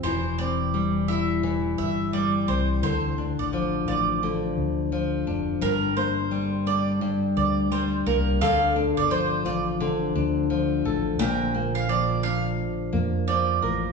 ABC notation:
X:1
M:4/4
L:1/16
Q:"Swing 16ths" 1/4=86
K:Dm
V:1 name="Mandolin"
c2 d3 z e z3 e z d z c z | c2 z d2 z d z8 z | B2 c3 z d z3 d z c z B z | f2 z d c2 d z8 z |
g2 z f d2 f z4 z d3 z |]
V:2 name="Nylon-string guitar" clef=bass
E,2 C2 G,2 E2 E,4 G,2 C2 | D,2 D2 F,2 F2 D,4 F,2 D2 | G,,2 B,2 G,2 D2 G,,4 G,2 B,2 | [D,A]2 D2 F,2 F2 D,2 D2 F,2 A2 |
[B,,B]2 B,2 F,2 D4 B,2 F,2 B2 |]
V:3 name="Fingered electric bass" clef=bass
E,,,8- E,,,2 G,,,4 C,,2 | D,,3 A,,,3 A,,,4 D,,4 F,,,2 | G,,,8- G,,,2 D,,4 C,,2 | D,,3 G,,,3 A,,,4 D,,4 A,,,2 |
B,,,8- B,,,2 F,,4 A,,,2 |]